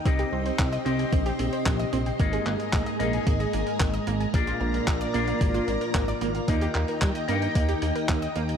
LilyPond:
<<
  \new Staff \with { instrumentName = "String machine" } { \time 4/4 \key c \minor \tempo 4 = 112 << { c'''1 | bes''1~ | bes''1~ | bes''1 | } \\ { <c' g' ees''>1 | <aes aes'>1 | <bes f' d''>1 | <ees' ees'' g''>1 | } >> }
  \new Staff \with { instrumentName = "Clean electric guitar" } { \time 4/4 \key c \minor <c c' ees' g' ees''>4. <c c' ees' g' ees''>2~ <c c' ees' g' ees''>8 | <aes, bes ees' aes' ees''>4. <aes, bes ees' aes' ees''>2~ <aes, bes ees' aes' ees''>8 | <bes, bes d' f' d''>4. <bes, bes d' f' d''>2~ <bes, bes d' f' d''>8 | <ees bes ees' g' ees''>4. <ees bes ees' g' ees''>2~ <ees bes ees' g' ees''>8 | }
  \new Staff \with { instrumentName = "Synth arpeggio sound" } { \time 4/4 \key c \minor c'16 g'16 c'16 c''16 c'16 ees''16 c'16 g''16 c'16 g'16 c'16 c''16 c'16 ees''16 c'16 g''16 | bes16 aes'16 bes16 bes'16 bes16 ees''16 bes16 aes''16 bes16 aes'16 bes16 bes'16 bes16 ees''16 bes16 aes''16 | bes16 f'16 bes16 bes'16 bes16 d''16 bes16 f''16 bes16 f'16 bes16 bes'16 bes16 d''16 bes16 f''16 | bes16 g'16 bes16 bes'16 bes16 ees''16 bes16 g''16 bes16 g'16 bes16 bes'16 bes16 ees''16 bes16 g''16 | }
  \new Staff \with { instrumentName = "Analog synth bass" } { \clef bass \time 4/4 \key c \minor c,8 c,8 c,8 c,8 bes,,8 bes,,8 bes,,8 bes,,8 | aes,,8 aes,,8 bes,,8 bes,,8 aes,,8 aes,,8 aes,,8 aes,,8 | bes,,8 bes,,8 bes,,8 bes,,8 aes,,8 aes,,8 aes,,8 aes,,8 | ees,8 ees,8 g,8 g,8 ees,8 ees,8 ees,8 ees,8 | }
  \new DrumStaff \with { instrumentName = "Drums" } \drummode { \time 4/4 <hh bd>16 hh8 hh16 <hc hh bd>16 hh16 hh16 hh16 <hh bd>16 hh16 hh16 hh16 <hc hh bd>16 hh16 hh16 hh16 | <hh bd>16 hh16 hc16 hh16 <hc hh bd>16 hh16 hh16 hh16 <hh bd>16 hh16 hh16 hh16 <hc hh bd>16 hh16 hh16 hh16 | <hh bd>16 hh8 hh16 <hc hh bd>16 hh16 hh16 hh16 <hh bd>16 hh16 hh16 hh16 <hc hh bd>16 hh16 hh16 hh16 | <hh bd>16 hh16 hc16 hh16 <hc hh bd>16 hh16 hh16 hh16 <hh bd>16 hh16 hh16 hh16 <hc hh bd>16 hh16 hh16 hh16 | }
>>